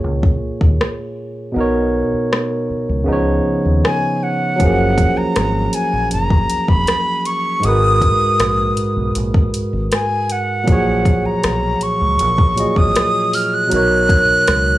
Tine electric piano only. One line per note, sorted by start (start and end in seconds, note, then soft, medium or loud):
0.00 1.50 A#2 medium
0.00 1.51 A#3 medium
0.00 1.52 F4 medium
0.00 1.53 G#4 medium
0.00 1.54 C#5 medium
1.52 3.03 B2 medium
1.52 3.04 B3 medium
1.56 3.05 D#4 medium
1.56 3.06 A#4 medium
1.60 3.07 C#5 medium
3.04 4.55 C#3 medium
3.04 4.56 B3 medium
3.08 4.58 F3 medium
3.08 4.57 D#4 medium
3.12 4.59 C#5 medium
4.56 7.58 F#3 medium
4.56 7.59 C#4 medium
4.60 7.60 F3 medium
4.60 7.61 G#4 medium
4.64 7.62 A#3 medium
7.60 10.62 G#2 medium
7.60 10.63 G#3 medium
7.64 10.64 F#4 medium
7.64 10.65 A#4 medium
7.68 10.66 B4 medium
10.64 12.52 A#2 medium
10.64 12.53 F#3 medium
10.68 12.54 F3 medium
10.68 12.55 G#4 medium
10.72 12.56 C#5 medium
12.56 13.71 A#2 medium
12.56 13.68 F#3 soft
12.56 13.72 F4 soft
12.56 13.72 G#4 soft
12.60 13.73 D#5 medium
13.67 14.78 B2 medium
13.67 14.78 F#3 medium
13.72 14.78 D#4 medium
13.72 14.78 A#4 medium
13.76 14.78 C#5 medium